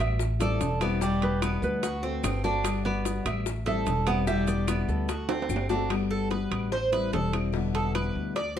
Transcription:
Already playing: G3 B3 F#4
0.00 A1 E5, high timbale, claves, maracas
0.19 muted steel-string acoustic guitar stroke, high bongo, maracas
0.40 G3 C4 E4 A4 D5, high bongo, high timbale, maracas
0.60 E1 E3 G3 C4 E4, high bongo, low bongo, high timbale, maracas
0.81 G3 B3 C4 E4 D5, high bongo, high timbale, claves, maracas
1.01 B2 D3 G3 B3 E4, high bongo, maracas
1.22 B4, high bongo, high timbale
1.42 B3, high bongo, high timbale, claves, maracas
1.62 D2 B4, maracas
1.83 F#4, muted steel-string acoustic guitar stroke, high bongo, high timbale, maracas
2.03 A3 C4 F#4, high bongo
2.23 G1 D3 A3 C4 F#4, high bongo, low bongo, high timbale, low timbale, claves, maracas
2.44 A3 C4 D4 F#4 D5, high bongo, maracas
2.63 G3 B3 F#4, high bongo, high timbale, claves, maracas
2.85 B3 D5, high bongo
3.05 high bongo, high timbale, maracas
3.25 A1 E5, high timbale, claves, maracas
3.46 muted steel-string acoustic guitar stroke, high bongo, maracas
3.66 G3 C4 E4 A4 E5, high bongo, high timbale
3.86 E1 E3 G3 C4 E4, high bongo, low bongo, high timbale, maracas
4.07 G3 B3 C4 E4 F#5, high bongo, high timbale, claves, maracas
4.27 B2 D3 G3 B3 E4 E5, high bongo, maracas
4.47 D5, high bongo, high timbale, maracas
4.67 B3, high bongo, high timbale, claves, maracas
4.88 D2 A4, maracas
5.08 F#4, muted steel-string acoustic guitar stroke, high bongo, high timbale, maracas
5.29 A3 C4 F#4, high bongo, high timbale
5.42 high timbale
5.49 G1 D3 A3 C4 F#4, high bongo, low bongo, claves, maracas
5.56 low timbale
5.69 A3 C4 D4 F#4, high bongo, low timbale, maracas
5.90 G3 B3 F#4, high bongo, high timbale, claves
6.11 A4, high bongo
6.31 B4, high bongo, high timbale
6.51 A1, high timbale, claves
6.72 C5, muted steel-string acoustic guitar stroke, high bongo
6.92 G3 C4 E4 B4, high bongo, high timbale
7.13 E1 E3 G3 C4 E4 A4, high bongo, low bongo, high timbale, low timbale
7.33 G3 C4 E4, high bongo, high timbale, claves
7.53 B2 D3 G3 B3 E4, high bongo
7.75 A4, high bongo, high timbale
7.95 B4, high bongo, high timbale, claves
8.15 D2
8.36 D5, muted steel-string acoustic guitar stroke, high bongo, high timbale

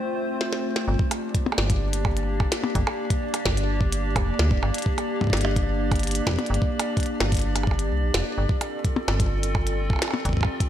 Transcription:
Already playing: A3 C4 F4 C5
0.41 snare
0.53 snare
0.76 snare
0.88 G1 A#3 D4 G4 D5
0.99 kick
1.11 closed hi-hat, percussion blips
1.35 kick, closed hi-hat
1.46 percussion blips
1.52 percussion blips
1.58 G1, snare
1.70 kick, closed hi-hat
1.93 closed hi-hat
2.05 kick, percussion blips
2.17 closed hi-hat
2.40 kick, percussion blips
2.52 snare, closed hi-hat
2.64 percussion blips
2.75 G1, kick, closed hi-hat
2.87 percussion blips
3.10 kick, closed hi-hat
3.34 closed hi-hat, percussion blips
3.45 G1, kick, snare
3.57 closed hi-hat
3.81 kick
3.92 closed hi-hat
4.16 F1, kick, closed hi-hat, percussion blips
4.39 D2, snare
4.51 F1, kick
4.63 G1, percussion blips
4.74 closed hi-hat
4.78 closed hi-hat
4.82 kick, closed hi-hat
4.98 closed hi-hat, percussion blips
5.21 kick, percussion blips
5.24 kick
5.27 kick
5.30 G1, kick, snare, closed hi-hat
5.37 closed hi-hat
5.41 closed hi-hat, percussion blips
5.56 kick, closed hi-hat
5.91 kick, closed hi-hat, percussion blips
5.96 closed hi-hat
5.99 closed hi-hat
6.03 closed hi-hat
6.07 closed hi-hat
6.11 closed hi-hat
6.15 closed hi-hat
6.27 kick, snare, percussion blips
6.29 kick
6.31 kick
6.34 kick
6.36 kick, closed hi-hat, percussion blips
6.46 G1, closed hi-hat
6.54 closed hi-hat
6.62 kick
6.80 closed hi-hat, percussion blips
6.97 kick, closed hi-hat
7.00 closed hi-hat
7.03 closed hi-hat
7.06 closed hi-hat
7.20 G1, snare, percussion blips
7.32 kick, closed hi-hat
7.35 closed hi-hat
7.37 closed hi-hat
7.39 closed hi-hat
7.42 closed hi-hat
7.56 closed hi-hat, percussion blips
7.63 kick, percussion blips
7.71 percussion blips
7.79 closed hi-hat
7.91 C2
8.03 A#1
8.14 F1, snare, closed hi-hat
8.38 G1 C4 F4 A4
8.49 kick
8.61 closed hi-hat, percussion blips
8.85 kick, closed hi-hat
8.96 percussion blips
9.08 G1, snare, percussion blips
9.20 kick, closed hi-hat
9.43 closed hi-hat
9.55 kick, percussion blips
9.67 closed hi-hat
9.90 kick, percussion blips
9.93 percussion blips
9.96 percussion blips
9.99 snare, closed hi-hat, percussion blips
10.02 percussion blips
10.05 percussion blips
10.08 percussion blips
10.11 percussion blips
10.14 percussion blips
10.25 G1 G4, kick, closed hi-hat
10.29 kick
10.33 kick
10.37 kick
10.41 kick, percussion blips
10.45 kick
10.60 kick, closed hi-hat

